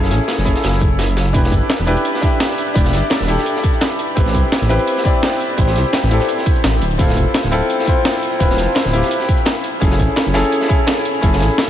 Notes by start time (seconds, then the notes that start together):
Already playing: F#1 C#4 E4 G#4 A4
0.03 snare
0.11 A1, snare, closed hi-hat
0.28 snare, closed hi-hat
0.38 F#1, snare, closed hi-hat
0.45 F#1 C#4 E4 G#4 A4, kick, closed hi-hat
0.56 snare, closed hi-hat
0.64 F#1, snare, closed hi-hat
0.73 snare
0.81 kick, closed hi-hat
0.99 snare, closed hi-hat
1.09 closed hi-hat
1.17 snare, closed hi-hat
1.33 E1 D4 E4 G4 B4, kick, closed hi-hat
1.44 snare
1.52 G1, kick, closed hi-hat
1.70 snare, closed hi-hat
1.79 E1, snare, closed hi-hat
1.87 E1 D4 E4 G4 B4, closed hi-hat
1.97 closed hi-hat
2.05 closed hi-hat
2.15 snare
2.21 D4 E4 G4 E5, kick, closed hi-hat
2.40 snare, closed hi-hat, open hi-hat
2.58 closed hi-hat
2.67 closed hi-hat
2.74 E1 D4 E4 G4 D5, kick, closed hi-hat
2.85 snare
2.93 G1, snare, closed hi-hat
3.10 snare, closed hi-hat
3.20 E1, snare, closed hi-hat
3.27 E1 D4 E4 G4 A4, closed hi-hat
3.38 snare, closed hi-hat
3.46 closed hi-hat
3.56 snare
3.64 kick, closed hi-hat
3.73 closed hi-hat
3.81 snare, closed hi-hat
3.98 closed hi-hat
4.15 A1 C4 E4 G4 B4, kick, closed hi-hat
4.26 snare
4.34 C2, kick, closed hi-hat
4.52 snare, closed hi-hat
4.61 A1, snare, closed hi-hat
4.69 A1 C4 E4 G4 B4, closed hi-hat
4.79 closed hi-hat
4.88 closed hi-hat
4.97 snare
5.04 C4 E4 G4 D5, kick, closed hi-hat
5.23 snare, closed hi-hat, open hi-hat
5.40 closed hi-hat
5.49 closed hi-hat
5.57 A1 C4 E4 G4 C5, kick, closed hi-hat
5.67 snare
5.75 C2, snare, closed hi-hat
5.93 snare, closed hi-hat
6.03 A1, snare, closed hi-hat
6.09 A1 C4 E4 G4 A4, closed hi-hat
6.20 snare, closed hi-hat
6.29 closed hi-hat
6.38 snare
6.46 kick, closed hi-hat
6.55 closed hi-hat
6.64 A1, snare, closed hi-hat
6.81 D1, closed hi-hat
6.91 closed hi-hat
6.98 D1 C4 E4 F4 A4, kick, closed hi-hat
7.08 snare
7.16 F1, kick, closed hi-hat
7.34 snare, closed hi-hat
7.43 D1, snare, closed hi-hat
7.51 D1 C4 E4 F4 A4, closed hi-hat
7.62 closed hi-hat
7.70 closed hi-hat
7.79 snare
7.86 C4 E4 F4 C5, kick, closed hi-hat
8.05 snare, closed hi-hat, open hi-hat
8.22 closed hi-hat
8.32 closed hi-hat
8.39 D1 C4 E4 F4 B4, kick, closed hi-hat
8.50 snare
8.58 F1, snare, closed hi-hat
8.75 snare, closed hi-hat
8.85 D1, snare, closed hi-hat
8.92 D1 C4 E4 F4 G4, closed hi-hat
9.02 snare, closed hi-hat
9.11 closed hi-hat
9.20 snare
9.29 kick, closed hi-hat
9.37 closed hi-hat
9.45 snare, closed hi-hat
9.64 closed hi-hat
9.80 F#1 C#4 E4 G#4 A4, kick, closed hi-hat
9.91 snare
9.99 A1, kick, closed hi-hat
10.16 snare, closed hi-hat
10.26 F#1, snare, closed hi-hat
10.34 F#1 C#4 E4 G#4 A4, snare, closed hi-hat
10.44 closed hi-hat
10.52 closed hi-hat
10.61 snare
10.68 C#4 E4 G#4 A4, kick, closed hi-hat
10.87 snare, closed hi-hat, open hi-hat
11.05 closed hi-hat
11.14 closed hi-hat
11.21 F#1 C#4 E4 G#4 A4, kick, closed hi-hat
11.33 snare
11.40 A1, snare, closed hi-hat
11.58 snare, closed hi-hat